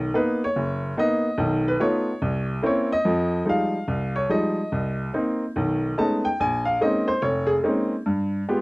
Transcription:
0.14 0.43 A#3 medium
0.14 0.43 B3 medium
0.14 0.43 D#4 medium
0.14 0.41 B4 medium
0.44 0.94 C#5 medium
0.56 0.92 F#1 medium
0.97 1.26 A#3 medium
0.97 1.27 B3 medium
0.97 1.26 D#4 medium
0.97 1.63 D#5 medium
1.38 1.74 B1 medium
1.38 1.74 D#3 medium
1.68 1.80 B4 medium
1.80 2.09 A3 medium
1.80 2.09 B3 medium
1.80 2.09 D#4 soft
1.80 2.09 F4 medium
1.80 2.46 C#5 medium
2.22 2.58 C2 medium
2.62 2.92 A#3 medium
2.62 2.92 C4 medium
2.62 2.92 C#4 medium
2.62 2.92 E4 medium
2.62 2.92 C#5 medium
2.92 3.43 D#5 loud
3.05 3.41 F2 medium
3.05 3.41 F3 medium
3.45 3.75 F3 medium
3.45 3.75 G3 soft
3.45 3.75 G#3 soft
3.45 3.75 D#4 medium
3.49 4.13 F5 medium
3.88 4.24 C2 medium
4.16 4.29 C#5 medium
4.29 4.59 F3 medium
4.29 4.59 G3 soft
4.29 4.59 G#3 soft
4.29 4.59 D#4 medium
4.29 4.95 D#5 medium
4.72 5.08 C2 medium
5.14 5.42 A#3 medium
5.14 5.43 C4 soft
5.14 5.43 D#4 medium
5.56 5.91 B1 medium
5.56 5.91 D#3 medium
5.98 6.26 G#3 medium
5.98 6.26 A3 soft
5.98 6.26 B3 soft
5.98 6.26 C#4 soft
5.98 6.26 D#4 medium
5.98 6.24 A5 medium
6.25 6.38 G5 medium
6.40 6.75 A#1 medium
6.40 6.66 G#5 loud
6.65 6.79 F5 medium
6.81 7.09 G#3 medium
6.81 7.09 A#3 soft
6.81 7.10 C4 soft
6.81 7.10 C#4 soft
6.81 7.10 D#4 medium
6.81 7.08 D#5 medium
7.08 7.21 C5 medium
7.22 7.58 F1 medium
7.22 7.48 C#5 medium
7.47 7.55 G#4 medium
7.63 7.92 G#3 medium
7.63 7.92 A#3 medium
7.63 7.92 C4 soft
7.63 7.93 C#4 medium
7.63 7.93 D#4 medium
8.06 8.41 G2 medium
8.49 8.61 G#3 medium
8.49 8.61 B3 soft
8.49 8.61 F4 soft
8.49 8.61 G4 medium

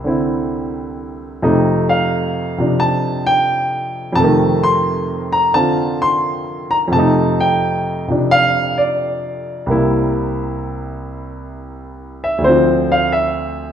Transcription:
0.00 1.40 C2 medium
0.00 1.41 C3 soft
0.00 1.44 A#3 soft
0.04 1.42 D3 soft
0.04 1.43 C4 soft
0.04 1.44 E4 soft
1.42 4.11 F2 medium
1.42 2.57 C3 medium
1.42 4.18 A3 medium
1.42 4.18 D#4 medium
1.89 2.76 F5 medium
2.58 4.15 C3 soft
2.58 4.18 F3 soft
2.58 4.19 D4 soft
2.80 3.29 A5 medium
3.27 4.20 G5 loud
4.13 6.86 F2 medium
4.13 6.90 C3 medium
4.13 4.61 A5 loud
4.20 6.94 A3 medium
4.24 6.96 D#3 medium
4.64 5.35 C6 loud
5.33 5.55 A#5 medium
5.54 6.92 D3 soft
5.54 6.93 C4 soft
5.54 6.93 F4 soft
5.54 6.04 A5 loud
6.02 6.73 C6 medium
6.71 6.76 A#5 medium
6.88 9.65 F2 medium
6.88 8.07 C3 medium
6.93 9.69 A3 soft
6.93 7.42 A5 medium
6.99 9.71 D#4 medium
7.41 8.05 G5 medium
8.08 9.67 C3 soft
8.08 9.68 F3 soft
8.08 9.69 D4 soft
8.31 8.80 F5 loud
8.78 10.11 D5 medium
9.66 12.42 C2 medium
9.66 12.43 C3 soft
9.66 12.44 A#3 soft
9.71 12.45 E4 medium
12.24 12.45 E5 medium
12.38 13.72 D2 medium
12.38 13.72 D3 medium
12.44 13.72 C4 medium
12.44 12.92 C5 medium
12.49 13.72 F3 medium
12.92 13.11 F5 medium
13.13 13.72 E5 medium

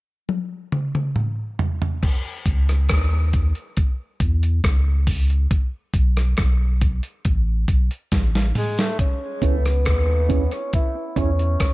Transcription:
0.29 high tom medium
0.72 mid tom medium
0.95 mid tom medium
1.16 mid tom medium
1.59 floor tom loud
1.82 floor tom medium
2.03 kick loud
2.03 crash medium
2.46 2.93 C#2 loud
2.46 kick medium
2.46 closed hi-hat medium
2.69 cross-stick medium
2.69 closed hi-hat medium
2.89 3.53 D#2 medium
2.89 kick loud
2.89 cross-stick loud
2.89 closed hi-hat medium
3.33 kick medium
3.33 closed hi-hat medium
3.55 closed hi-hat soft
3.77 kick loud
3.77 closed hi-hat medium
4.20 4.61 E2 medium
4.20 kick loud
4.20 closed hi-hat medium
4.43 closed hi-hat medium
4.64 5.47 C#2 loud
4.64 kick loud
4.64 cross-stick loud
4.64 closed hi-hat medium
5.07 kick medium
5.07 open hi-hat medium
5.30 closed hi-hat soft
5.51 kick loud
5.51 closed hi-hat medium
5.94 6.34 B1 loud
5.94 kick medium
5.94 closed hi-hat medium
6.17 cross-stick medium
6.17 closed hi-hat medium
6.37 7.01 B1 medium
6.37 kick loud
6.37 cross-stick medium
6.37 closed hi-hat medium
6.81 kick medium
6.81 closed hi-hat medium
7.03 closed hi-hat medium
7.25 7.66 A1 medium
7.25 kick loud
7.25 closed hi-hat medium
7.68 7.89 B1 medium
7.68 kick medium
7.68 closed hi-hat medium
7.91 closed hi-hat medium
8.12 8.52 A1 medium
8.12 kick loud
8.12 snare medium
8.12 closed hi-hat loud
8.35 snare medium
8.55 8.81 G#3 medium
8.55 mid tom medium
8.55 open hi-hat medium
8.78 8.99 A3 medium
8.78 snare medium
8.78 closed hi-hat medium
8.99 9.45 C#4 medium
8.99 kick loud
8.99 closed hi-hat medium
9.42 9.89 C#2 loud
9.42 10.55 B3 loud
9.42 9.54 C#4 medium
9.42 9.55 E4 medium
9.42 9.55 G#4 medium
9.42 9.55 C#5 medium
9.42 kick medium
9.42 closed hi-hat medium
9.65 cross-stick medium
9.65 closed hi-hat medium
9.85 10.49 D#2 medium
9.85 kick loud
9.85 cross-stick medium
9.85 closed hi-hat medium
10.29 10.41 C#4 medium
10.29 10.42 E4 medium
10.29 10.42 G#4 medium
10.29 10.42 C#5 medium
10.29 kick medium
10.29 closed hi-hat medium
10.51 10.74 C#4 medium
10.51 closed hi-hat soft
10.73 11.19 E4 loud
10.73 kick loud
10.73 closed hi-hat medium
11.16 11.57 E2 medium
11.16 11.28 C#4 medium
11.16 11.73 C#4 medium
11.16 11.29 E4 medium
11.16 11.29 G#4 medium
11.16 11.29 C#5 medium
11.16 kick medium
11.16 closed hi-hat medium
11.39 muted clean electric guitar stroke soft
11.39 closed hi-hat medium
11.60 11.73 C#2 medium
11.60 kick loud
11.60 cross-stick loud
11.60 closed hi-hat loud

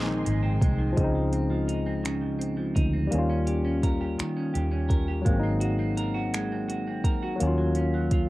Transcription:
0.00 0.23 A#1 loud
0.00 0.96 A#2 medium
0.00 0.90 F3 medium
0.00 0.25 G#3 medium
0.00 0.92 G#3 medium
0.00 0.42 C4 medium
0.00 0.94 C4 medium
0.00 0.95 D#4 medium
0.00 0.96 D#4 medium
0.00 0.93 A#4 medium
0.00 0.93 G#5 medium
0.00 0.93 C6 medium
0.07 0.78 D#3 medium
0.25 0.58 G#1 medium
0.25 0.61 G#3 medium
0.25 closed hi-hat medium
0.43 1.33 C4 medium
0.61 0.94 C2 medium
0.61 1.32 G#3 medium
0.61 kick medium
0.61 closed hi-hat medium
0.79 1.15 D#3 medium
0.93 2.03 C#3 medium
0.93 3.05 F3 medium
0.93 3.07 G#3 medium
0.97 2.72 C#2 medium
0.97 3.09 C4 medium
0.97 kick loud
0.97 closed hi-hat medium
1.04 3.11 D#4 medium
1.15 1.49 F3 soft
1.33 1.85 C4 medium
1.33 closed hi-hat soft
1.50 2.20 F3 medium
1.68 2.75 D#4 medium
1.68 closed hi-hat medium
1.86 2.38 C4 medium
2.04 3.10 C#3 medium
2.04 finger snap medium
2.04 closed hi-hat medium
2.21 2.56 F3 medium
2.39 2.92 C4 medium
2.39 closed hi-hat soft
2.57 3.18 F3 medium
2.75 3.08 D2 medium
2.75 3.33 D#4 medium
2.75 kick medium
2.75 closed hi-hat medium
2.93 3.19 C4 soft
3.07 4.18 D#3 medium
3.07 5.20 G3 medium
3.07 5.21 A#3 medium
3.12 4.15 D#2 medium
3.12 5.23 C#4 medium
3.12 closed hi-hat medium
3.19 5.25 F4 medium
3.30 3.64 C#4 medium
3.47 4.00 G4 medium
3.47 closed hi-hat soft
3.65 4.35 C#4 medium
3.83 4.88 A#4 medium
3.83 kick medium
3.83 closed hi-hat medium
4.01 4.53 G4 medium
4.18 7.40 D#3 medium
4.18 finger snap medium
4.18 muted fingered electric bass stroke soft
4.18 closed hi-hat medium
4.36 4.70 C#4 medium
4.54 5.22 D#2 medium
4.54 5.07 G4 medium
4.54 closed hi-hat soft
4.71 5.32 C#4 medium
4.89 5.46 A#4 medium
4.89 kick medium
4.89 closed hi-hat medium
5.08 5.33 G4 medium
5.21 7.34 F#3 medium
5.21 6.32 G#3 medium
5.21 7.36 A#3 medium
5.26 7.05 G#1 medium
5.26 7.38 C4 medium
5.26 kick medium
5.26 closed hi-hat medium
5.33 5.36 C#4 medium
5.39 5.78 C4 medium
5.39 7.43 D#4 medium
5.60 6.14 F#4 medium
5.60 closed hi-hat soft
5.79 6.51 C4 medium
5.97 7.04 A#4 medium
5.97 closed hi-hat medium
6.14 6.68 F#4 medium
6.34 7.48 G#3 medium
6.34 finger snap loud
6.34 closed hi-hat medium
6.52 6.86 C4 medium
6.68 7.22 F#4 soft
6.68 closed hi-hat soft
6.87 7.48 C4 medium
7.04 7.37 D2 medium
7.04 8.29 A#4 medium
7.04 kick medium
7.04 closed hi-hat medium
7.23 8.12 F#4 medium
7.36 8.29 F#3 medium
7.36 8.29 A#3 medium
7.40 8.29 D#2 medium
7.40 8.29 D#3 medium
7.40 8.29 C#4 medium
7.40 closed hi-hat medium
7.47 8.29 F4 medium
7.58 7.93 F#3 medium
7.75 8.29 C#4 medium
7.75 closed hi-hat soft
7.94 8.29 F#3 medium
8.11 8.29 F4 medium
8.11 kick medium
8.11 closed hi-hat medium

